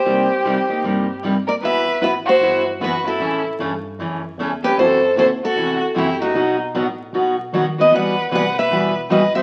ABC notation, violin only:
X:1
M:4/4
L:1/8
Q:"Swing" 1/4=153
K:Cm
V:1 name="Violin"
G6 z B | [K:Em] B2 B F2 z F E- | E z6 G | A2 A F2 z E ^D- |
^D z6 B | B2 B B2 z B c |]